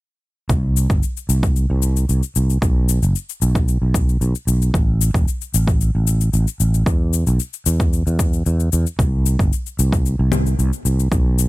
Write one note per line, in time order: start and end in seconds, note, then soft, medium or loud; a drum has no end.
0.49 0.86 C2 medium
0.49 kick loud
0.49 cabasa soft
0.77 cabasa medium
0.90 1.00 G1 medium
0.90 kick medium
0.90 cabasa soft
1.03 cabasa soft
1.17 cabasa soft
1.29 1.65 C2 medium
1.29 cabasa medium
1.43 kick loud
1.43 cabasa soft
1.56 cabasa soft
1.70 2.05 C2 medium
1.82 cabasa medium
1.97 cabasa soft
2.09 2.20 C2 medium
2.09 cabasa soft
2.23 cabasa soft
2.36 2.58 C2 medium
2.36 cabasa medium
2.50 cabasa soft
2.62 2.98 B1 medium
2.62 kick loud
2.62 cabasa soft
2.89 cabasa medium
3.03 3.13 F#1 medium
3.03 cabasa soft
3.16 cabasa soft
3.29 cabasa soft
3.42 3.78 B1 medium
3.42 cabasa medium
3.55 kick loud
3.55 cabasa soft
3.68 cabasa soft
3.82 4.17 B1 medium
3.94 kick loud
3.94 cabasa medium
4.09 cabasa soft
4.21 4.33 B1 medium
4.21 cabasa soft
4.35 cabasa soft
4.47 4.69 B1 medium
4.47 cabasa medium
4.62 cabasa soft
4.74 5.11 A1 medium
4.74 kick loud
4.74 cabasa soft
5.01 cabasa medium
5.14 5.25 E1 medium
5.14 kick loud
5.14 cabasa soft
5.28 cabasa soft
5.41 cabasa soft
5.54 5.90 A1 medium
5.54 cabasa medium
5.67 kick loud
5.67 cabasa soft
5.81 cabasa soft
5.95 6.30 A1 medium
6.07 cabasa medium
6.21 cabasa soft
6.33 6.45 A1 medium
6.33 cabasa soft
6.48 cabasa soft
6.60 6.82 A1 medium
6.60 cabasa medium
6.74 cabasa soft
6.86 7.23 E2 medium
6.86 kick loud
6.86 cabasa soft
7.13 cabasa medium
7.27 7.37 B1 medium
7.27 cabasa soft
7.40 cabasa soft
7.53 cabasa soft
7.66 8.03 E2 medium
7.66 cabasa medium
7.80 kick loud
7.80 cabasa soft
7.93 cabasa soft
8.07 8.42 E2 medium
8.07 cabasa soft
8.19 kick medium
8.19 cabasa medium
8.33 cabasa soft
8.46 8.68 E2 medium
8.46 cabasa soft
8.60 cabasa soft
8.73 8.84 E2 medium
8.73 cabasa medium
8.87 cabasa soft
8.99 9.35 C2 medium
8.99 kick loud
8.99 cabasa soft
9.26 cabasa medium
9.39 9.50 G1 medium
9.39 kick medium
9.39 cabasa soft
9.53 cabasa soft
9.66 cabasa soft
9.79 10.15 C2 medium
9.79 cabasa medium
9.92 kick medium
9.92 cabasa soft
10.06 cabasa soft
10.19 10.55 C2 medium
10.32 low conga medium
10.32 cabasa medium
10.46 cabasa soft
10.59 10.70 C2 medium
10.59 cabasa soft
10.73 cabasa soft
10.85 11.07 C2 medium
10.85 cabasa medium
11.00 cabasa soft
11.12 11.48 B1 medium
11.12 kick medium
11.12 cabasa soft
11.39 cabasa medium